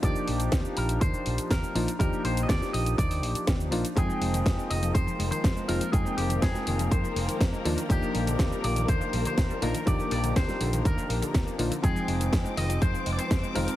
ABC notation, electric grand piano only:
X:1
M:4/4
L:1/16
Q:1/4=122
K:Eb
V:1 name="Electric grand piano"
[F,B,DEG]12- [F,B,DEG]2 [F,B,DEF] z | [F,B,DEG]12- [F,B,DEG]2 [F,B,DEF] z | [F,A,CEg]12- [F,A,CEg]2 [F,A,CEF] z | [F,A,CEg]12- [F,A,CEg]2 [F,B,DEF] z |
[F,B,DEG]12- [F,B,DEG]2 [F,B,DEF] z | [F,B,DEG]12- [F,B,DEG]2 [F,B,DEF] z | [F,A,CEg]12- [F,A,CEg]2 [F,A,CEF] z |]